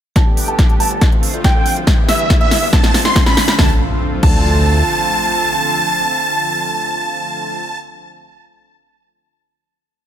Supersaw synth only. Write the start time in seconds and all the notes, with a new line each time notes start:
0.16 A5
0.48 A5
0.80 A5
1.44 G5
2.09 E5
2.41 E5
2.73 A5
3.05 C6
3.26 B5
3.58 A5
4.23 A5